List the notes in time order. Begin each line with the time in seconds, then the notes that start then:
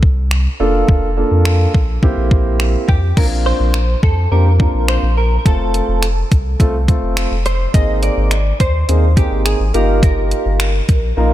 Already playing: C2
0.03 kick
0.31 finger snap
0.60 F1 A#3 D4 F4 A4
0.88 F1, kick
1.17 A#3 D4 F4 A4
1.31 F2
1.45 finger snap
1.74 A#1, kick
2.03 C2 A#3 C4 E4 G4, kick
2.17 A#1
2.31 kick
2.60 finger snap
2.89 F2 G4, kick
3.17 A#1 A#3 C4 D4 F4 A#4, kick, crash
3.46 C5
3.60 A#1
3.74 finger snap
4.03 F2 A4, kick
4.31 F2 A#3 C4 D4 G4 A#4
4.60 A#3 C4 D4 F4, kick
4.74 A#1
4.88 C5, finger snap
5.03 A#1
5.17 A#4
5.39 A#4
5.45 F1 A3 C4 F4 A4, kick, closed hi-hat
5.74 closed hi-hat
5.88 F1
6.03 finger snap, closed hi-hat
6.32 C2, kick, closed hi-hat
6.60 C2 A3 C4 F4 A4, kick, closed hi-hat
6.88 A3 C4 F4 A4, kick, closed hi-hat
7.03 F1
7.17 finger snap, closed hi-hat
7.31 F1
7.46 C5, closed hi-hat
7.74 G#1 A#3 C4 D#4 G#4 D#5, kick, closed hi-hat
8.03 D5, closed hi-hat
8.17 G#1
8.31 finger snap, closed hi-hat
8.60 D#2 C5, kick, closed hi-hat
8.88 D#2 A#3 C4 D#4 G#4, closed hi-hat
9.17 A#3 C4 D#4 G4 G#4, kick, closed hi-hat
9.31 G#1
9.46 G#4, finger snap, closed hi-hat
9.60 G#1
9.74 G1 A#3 D#4 F4 G4 A#4, closed hi-hat
10.03 A#4, kick, closed hi-hat
10.31 closed hi-hat
10.46 G1
10.60 finger snap, closed hi-hat
10.89 A#1, kick, closed hi-hat
11.17 A#1 A#3 D#4 F4 A#4